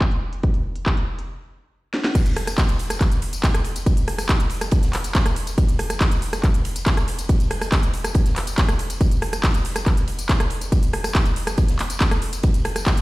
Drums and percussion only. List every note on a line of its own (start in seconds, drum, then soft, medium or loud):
0.01 kick loud
0.01 clap loud
0.01 closed hi-hat medium
0.11 closed hi-hat medium
0.33 closed hi-hat medium
0.43 kick loud
0.43 closed hi-hat medium
0.54 closed hi-hat medium
0.76 closed hi-hat medium
0.86 kick loud
0.86 clap loud
0.86 closed hi-hat medium
0.97 closed hi-hat medium
1.19 closed hi-hat medium
1.94 snare medium
2.04 snare medium
2.15 kick loud
2.15 closed hi-hat medium
2.15 crash loud
2.15 ride medium
2.15 tambourine medium
2.26 closed hi-hat medium
2.26 tambourine soft
2.36 cross-stick medium
2.36 open hi-hat loud
2.36 ride medium
2.47 cross-stick medium
2.47 closed hi-hat medium
2.47 tambourine medium
2.58 kick loud
2.58 snare loud
2.58 clap loud
2.58 closed hi-hat medium
2.58 open hi-hat medium
2.58 tambourine medium
2.69 closed hi-hat medium
2.69 ride soft
2.69 tambourine soft
2.79 open hi-hat loud
2.79 ride medium
2.90 cross-stick medium
2.90 closed hi-hat medium
2.90 tambourine medium
3.00 kick loud
3.00 clap medium
3.00 closed hi-hat medium
3.00 ride medium
3.00 tambourine medium
3.12 closed hi-hat medium
3.12 tambourine soft
3.22 open hi-hat loud
3.22 ride medium
3.33 closed hi-hat medium
3.33 tambourine medium
3.43 kick loud
3.43 snare loud
3.43 clap loud
3.43 closed hi-hat medium
3.43 ride medium
3.43 tambourine medium
3.54 cross-stick medium
3.54 closed hi-hat medium
3.54 tambourine soft
3.64 open hi-hat loud
3.64 ride medium
3.76 closed hi-hat medium
3.76 tambourine medium
3.86 kick loud
3.86 closed hi-hat medium
3.86 ride medium
3.86 tambourine medium
3.97 closed hi-hat medium
3.97 tambourine soft
4.07 cross-stick medium
4.07 open hi-hat loud
4.07 ride medium
4.18 cross-stick medium
4.18 open hi-hat medium
4.18 tambourine medium
4.29 kick loud
4.29 snare loud
4.29 clap loud
4.29 closed hi-hat medium
4.29 ride medium
4.29 tambourine medium
4.40 closed hi-hat medium
4.40 tambourine soft
4.49 open hi-hat loud
4.49 ride medium
4.61 cross-stick medium
4.61 closed hi-hat medium
4.61 ride soft
4.61 tambourine medium
4.71 kick loud
4.71 closed hi-hat medium
4.71 ride medium
4.71 tambourine medium
4.83 snare medium
4.83 closed hi-hat medium
4.83 tambourine soft
4.93 snare soft
4.93 clap medium
4.93 open hi-hat loud
4.93 ride medium
5.04 closed hi-hat medium
5.04 tambourine medium
5.15 kick loud
5.15 snare loud
5.15 clap loud
5.15 closed hi-hat medium
5.15 ride medium
5.15 tambourine medium
5.26 cross-stick medium
5.26 closed hi-hat medium
5.26 tambourine soft
5.36 open hi-hat loud
5.36 ride medium
5.47 closed hi-hat medium
5.47 ride soft
5.47 tambourine medium
5.58 kick loud
5.58 closed hi-hat medium
5.58 ride medium
5.58 tambourine medium
5.69 closed hi-hat medium
5.69 tambourine soft
5.79 cross-stick medium
5.79 open hi-hat loud
5.79 ride medium
5.90 cross-stick medium
5.90 closed hi-hat medium
5.90 tambourine medium
6.01 kick loud
6.01 snare loud
6.01 clap loud
6.01 closed hi-hat medium
6.01 open hi-hat medium
6.01 tambourine medium
6.11 closed hi-hat medium
6.11 ride soft
6.11 tambourine soft
6.22 open hi-hat loud
6.22 ride medium
6.33 cross-stick medium
6.33 closed hi-hat medium
6.33 tambourine medium
6.44 kick loud
6.44 clap medium
6.44 closed hi-hat medium
6.44 ride medium
6.44 tambourine soft
6.54 closed hi-hat medium
6.54 tambourine soft
6.65 open hi-hat loud
6.65 ride medium
6.76 closed hi-hat medium
6.76 tambourine medium
6.86 kick loud
6.86 snare loud
6.86 clap loud
6.86 closed hi-hat medium
6.86 ride medium
6.86 tambourine medium
6.97 cross-stick medium
6.97 closed hi-hat medium
6.97 tambourine soft
7.08 open hi-hat loud
7.08 ride medium
7.19 closed hi-hat medium
7.19 tambourine medium
7.29 kick loud
7.29 closed hi-hat medium
7.29 ride loud
7.40 closed hi-hat medium
7.40 tambourine soft
7.51 cross-stick medium
7.51 open hi-hat loud
7.51 ride medium
7.61 cross-stick medium
7.61 open hi-hat medium
7.61 tambourine medium
7.72 kick loud
7.72 snare loud
7.72 clap loud
7.72 closed hi-hat medium
7.72 ride medium
7.72 tambourine medium
7.83 closed hi-hat medium
7.83 tambourine soft
7.94 open hi-hat loud
7.94 ride medium
8.04 cross-stick medium
8.04 closed hi-hat medium
8.04 ride soft
8.04 tambourine medium
8.14 kick loud
8.14 closed hi-hat medium
8.14 ride medium
8.26 snare medium
8.26 closed hi-hat medium
8.26 tambourine soft
8.36 snare soft
8.36 clap medium
8.36 open hi-hat loud
8.36 ride medium
8.47 closed hi-hat medium
8.47 tambourine medium
8.57 kick loud
8.57 snare loud
8.57 clap loud
8.57 closed hi-hat medium
8.57 ride medium
8.57 tambourine medium
8.69 cross-stick medium
8.69 closed hi-hat medium
8.69 tambourine soft
8.79 open hi-hat loud
8.79 ride medium
8.90 closed hi-hat medium
8.90 ride soft
8.90 tambourine medium
9.01 kick loud
9.01 closed hi-hat medium
9.01 ride medium
9.01 tambourine medium
9.11 closed hi-hat medium
9.11 tambourine soft
9.22 cross-stick medium
9.22 open hi-hat loud
9.22 ride medium
9.33 cross-stick medium
9.33 closed hi-hat medium
9.33 tambourine medium
9.43 kick loud
9.43 snare loud
9.43 clap loud
9.43 closed hi-hat medium
9.43 open hi-hat medium
9.43 tambourine medium
9.54 closed hi-hat medium
9.54 ride soft
9.54 tambourine soft
9.65 open hi-hat loud
9.65 ride medium
9.76 cross-stick medium
9.76 closed hi-hat medium
9.76 tambourine medium
9.86 kick loud
9.86 clap medium
9.86 closed hi-hat medium
9.86 ride medium
9.86 tambourine medium
9.97 closed hi-hat medium
9.97 tambourine soft
10.07 open hi-hat loud
10.07 ride medium
10.19 closed hi-hat medium
10.19 tambourine medium
10.29 kick loud
10.29 snare loud
10.29 clap loud
10.29 closed hi-hat medium
10.29 ride medium
10.29 tambourine medium
10.40 cross-stick loud
10.40 closed hi-hat medium
10.40 tambourine soft
10.50 open hi-hat loud
10.50 ride medium
10.61 closed hi-hat medium
10.61 tambourine medium
10.72 kick loud
10.72 closed hi-hat medium
10.72 ride medium
10.72 tambourine medium
10.83 closed hi-hat medium
10.83 tambourine soft
10.93 cross-stick medium
10.93 open hi-hat loud
10.93 ride medium
11.04 cross-stick medium
11.04 open hi-hat medium
11.04 tambourine medium
11.14 kick loud
11.14 snare loud
11.14 clap loud
11.14 closed hi-hat medium
11.14 ride medium
11.14 tambourine medium
11.26 closed hi-hat medium
11.26 tambourine soft
11.36 open hi-hat loud
11.36 ride medium
11.47 cross-stick loud
11.47 closed hi-hat medium
11.47 ride soft
11.47 tambourine medium
11.58 kick loud
11.58 closed hi-hat medium
11.58 ride loud
11.58 tambourine medium
11.68 snare medium
11.68 closed hi-hat medium
11.68 tambourine soft
11.79 snare medium
11.79 clap medium
11.79 open hi-hat loud
11.79 ride medium
11.90 closed hi-hat medium
11.90 tambourine medium
12.01 kick loud
12.01 snare loud
12.01 clap loud
12.01 closed hi-hat medium
12.01 ride medium
12.11 cross-stick loud
12.11 closed hi-hat medium
12.11 tambourine soft
12.22 open hi-hat loud
12.22 ride medium
12.33 closed hi-hat medium
12.33 ride soft
12.33 tambourine medium
12.43 kick loud
12.43 closed hi-hat medium
12.43 ride loud
12.43 tambourine medium
12.54 closed hi-hat medium
12.54 tambourine soft
12.65 cross-stick medium
12.65 open hi-hat loud
12.65 ride medium
12.76 cross-stick medium
12.76 closed hi-hat medium
12.76 tambourine medium
12.86 kick loud
12.86 snare loud
12.86 clap loud
12.86 closed hi-hat medium
12.86 open hi-hat medium
12.86 tambourine medium
12.97 closed hi-hat medium
12.97 ride soft
12.97 tambourine soft